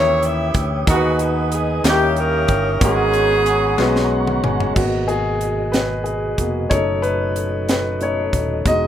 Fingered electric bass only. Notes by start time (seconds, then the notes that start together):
Already playing: D#2
0.55 D2
0.88 D#2
1.84 D#2
2.49 G1
2.82 G#1
3.78 B1
4.43 G1
4.76 G#1
6.38 F1
6.71 F#1
8.33 D#1
8.66 E1